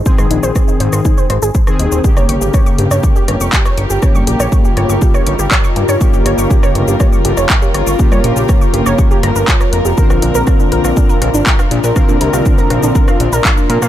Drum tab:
HH |--x---x---x---x-|--x---x---x---x-|--x---x---x---x-|--x---x---x---x-|
SH |xx-xxx-xxx-xxx-x|xx-xxx-xxx-xxx-x|xx-xxx-xxx-xxx-x|xx-xxx-xxx-xxx-x|
CP |----------------|------------x---|------------x---|------------x---|
SD |-r--r--r--r--r--|-r--r--r--r--r--|r--r--r--r--r--r|--r--r--r--r--r-|
BD |o---o---o---o---|o---o---o---o---|o---o---o---o---|o---o---o---o---|

HH |--x---x---x---x-|--x---x---x---x-|--x---x---x---x-|
SH |xx-xxx-xxx-xxx-x|xx-xxx-xxx-xxx-x|xx-xxx-xxx-xxx-x|
CP |------------x---|------------x---|------------x---|
SD |-r--r--r--r--r--|-r--r--r--r--r--|r--r--r--r--r--r|
BD |o---o---o---o---|o---o---o---o---|o---o---o---o---|